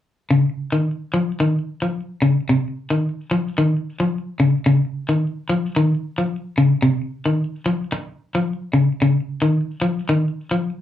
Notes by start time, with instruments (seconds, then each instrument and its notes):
0.30 clean electric guitar C#3
0.72 clean electric guitar D#3
1.14 clean electric guitar F3
1.40 clean electric guitar D#3
1.82 clean electric guitar F3
2.22 clean electric guitar C#3
2.49 clean electric guitar C3
2.90 clean electric guitar D#3
3.31 clean electric guitar F3
3.58 clean electric guitar D#3
4.00 clean electric guitar F3
4.40 clean electric guitar C#3
4.66 clean electric guitar C#3
5.09 clean electric guitar D#3
5.50 clean electric guitar F3
5.76 clean electric guitar D#3
6.18 clean electric guitar F3
6.58 clean electric guitar C#3
6.82 clean electric guitar C3
7.26 clean electric guitar D#3
7.66 clean electric guitar F3
7.92 muted clean electric guitar stroke
8.35 clean electric guitar F3
8.73 clean electric guitar C#3
9.02 clean electric guitar C#3
9.42 clean electric guitar D#3
9.82 clean electric guitar F3
10.09 clean electric guitar D#3
10.51 clean electric guitar F3